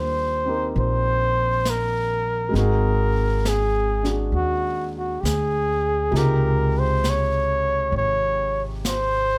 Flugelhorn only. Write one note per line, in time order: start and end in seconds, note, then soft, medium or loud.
0.00 0.73 C5 medium
0.80 1.71 C5 medium
1.70 2.57 A#4 medium
2.57 3.50 A#4 medium
3.48 4.18 G#4 medium
4.36 4.92 F#4 medium
4.98 5.22 F#4 medium
5.21 5.26 G4 medium
5.25 6.18 G#4 medium
6.17 6.80 A#4 medium
6.79 7.11 C5 medium
7.10 7.96 C#5 medium
7.97 8.64 C#5 medium
8.87 9.38 C5 loud